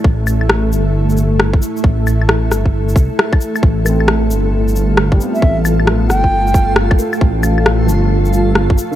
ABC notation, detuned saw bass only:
X:1
M:4/4
L:1/16
Q:"Swing 16ths" 1/4=134
K:Flyd
V:1 name="Detuned saw bass" clef=bass
A,,,6 G,,,8 z2 | A,,,6 G,,,4 C,, z4 z | A,,,6 G,,,8 z2 | A,,,6 G,,,8 z2 |
A,,,6 G,,,8 z2 |]